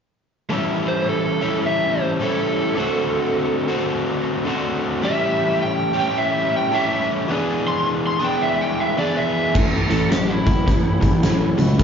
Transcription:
0.50 overdriven electric guitar A2 E3 G3 C#4 E4
0.88 electric slide guitar C5
1.09 electric slide guitar A4
1.41 overdriven electric guitar A2 E3 G3 C#4 E4
1.66 electric slide guitar E5
2.01 electric slide guitar C5
2.19 overdriven electric guitar A2 E3 G3 C#4 E4
2.23 electric slide guitar A4
2.75 overdriven electric guitar D3 A3 C4 F#4
3.68 overdriven electric guitar D3 A3 C4 F#4
4.45 overdriven electric guitar D3 A3 C4 F#4
5.02 overdriven electric guitar A2 E3 G3 C#4 G4, electric slide guitar E5
5.62 electric slide guitar G5
5.93 overdriven electric guitar A2 E3 G3 C#4 G4
6.00 electric slide guitar G5
6.18 electric slide guitar E5
6.56 electric slide guitar G5
6.71 overdriven electric guitar A2 E3 G3 C#4 G4, electric slide guitar E5
7.28 overdriven electric guitar E3 B3 D4
7.32 overdriven electric guitar G#4
7.68 electric slide guitar C6
8.07 electric slide guitar C6
8.19 overdriven electric guitar E3 B3 D4 G#4
8.24 electric slide guitar G5
8.42 electric slide guitar E5
8.61 electric slide guitar G5
8.80 electric slide guitar E5
8.98 overdriven electric guitar E3 B3 D4 G#4, electric slide guitar D5
9.17 electric slide guitar E5
9.54 picked electric bass A1, overdriven electric guitar A2 E3, tonewheel organ A3 C#4 E4 A4, kick, crash
9.88 picked electric bass A1, overdriven electric guitar A2 E3, tonewheel organ A3 C#4 E4 A4, closed hi-hat
9.92 electric slide guitar A4
10.09 picked electric bass A1, overdriven electric guitar A2 F#3, tonewheel organ A3 C#4 E4 A4, electric slide guitar G4, snare, closed hi-hat
10.29 electric slide guitar E4
10.44 picked electric bass A1, overdriven electric guitar A2 F#3, tonewheel organ A3 C#4 E4 B4, kick, closed hi-hat
10.65 picked electric bass A1, overdriven electric guitar A2 E3, tonewheel organ A3 C#4 E4 B4, kick, closed hi-hat
11.00 picked electric bass A1, overdriven electric guitar A2 E3, tonewheel organ A3 C#4 E4 G4, kick, closed hi-hat
11.20 picked electric bass A1, overdriven electric guitar A2 F#3, tonewheel organ A3 C#4 E4 A4, snare, closed hi-hat
11.55 picked electric bass C#2, overdriven electric guitar A2 F#3, tonewheel organ A3 C#4 E4 F#4, closed hi-hat
11.77 picked electric bass D2, overdriven electric guitar D3 A3, tonewheel organ A3 D4 F#4 A4, kick, closed hi-hat

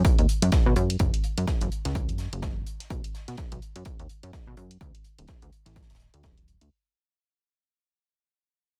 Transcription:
0.05 kick, closed hi-hat
0.19 analog synth bass D#2, closed hi-hat
0.29 closed hi-hat
0.42 analog synth bass F#2, closed hi-hat
0.52 kick, snare, closed hi-hat
0.66 analog synth bass B2
0.76 analog synth bass F#2, closed hi-hat
0.90 closed hi-hat
0.99 analog synth bass F#1, kick, closed hi-hat
1.14 closed hi-hat
1.24 closed hi-hat
1.38 analog synth bass F#2, closed hi-hat
1.47 kick, snare, closed hi-hat
1.61 analog synth bass F#1, closed hi-hat
1.72 closed hi-hat
1.85 analog synth bass C#2, snare, closed hi-hat
1.95 kick, closed hi-hat
2.08 analog synth bass F#2, closed hi-hat
2.18 snare, closed hi-hat
2.33 analog synth bass F#1, closed hi-hat
2.42 kick, snare, closed hi-hat
2.67 closed hi-hat
2.80 snare, closed hi-hat
2.90 analog synth bass B1, kick, closed hi-hat
3.04 closed hi-hat
3.14 snare, closed hi-hat
3.28 analog synth bass B2, snare, closed hi-hat
3.37 kick, snare, closed hi-hat
3.52 analog synth bass B1, closed hi-hat
3.62 closed hi-hat
3.76 analog synth bass F#2, closed hi-hat
3.85 kick, closed hi-hat
3.99 analog synth bass D#2, closed hi-hat
4.09 closed hi-hat
4.23 analog synth bass F#2, closed hi-hat
4.33 kick, snare, closed hi-hat
4.47 analog synth bass B2
4.57 analog synth bass F#2, closed hi-hat
4.71 closed hi-hat
4.81 analog synth bass D2, kick, closed hi-hat
4.95 closed hi-hat
5.04 closed hi-hat
5.18 analog synth bass D1, closed hi-hat
5.28 kick, snare, closed hi-hat
5.42 analog synth bass D2, closed hi-hat
5.52 closed hi-hat
5.66 analog synth bass A1, snare, closed hi-hat
5.76 kick, snare, closed hi-hat
5.82 snare, closed hi-hat
5.90 analog synth bass D1, snare, closed hi-hat
5.95 snare, closed hi-hat
6.00 snare, closed hi-hat
6.14 analog synth bass D2, closed hi-hat
6.23 kick, snare, closed hi-hat
6.38 closed hi-hat
6.48 closed hi-hat
6.61 analog synth bass D2, closed hi-hat

